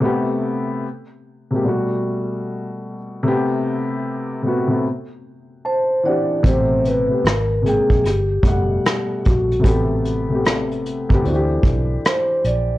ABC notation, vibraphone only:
X:1
M:4/4
L:1/8
Q:"Swing 16ths" 1/4=75
K:Ador
V:1 name="Vibraphone"
z8 | z6 c d | c B ^A ^G =G3 F | A6 c d |]